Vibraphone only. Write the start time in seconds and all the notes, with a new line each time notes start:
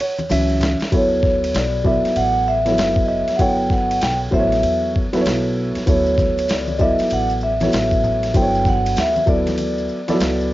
0.94 C#5
1.55 D5
1.86 E5
2.17 F#5
2.48 E5
3.05 D#5 E5
3.36 F#5
3.40 G5
3.71 F#5
4.02 G5
4.34 E5
5.90 C#5
6.51 D5
6.78 D#5 E5
7.13 F#5
7.43 E5
8.36 G5
8.68 F#5
8.99 E5
9.30 D5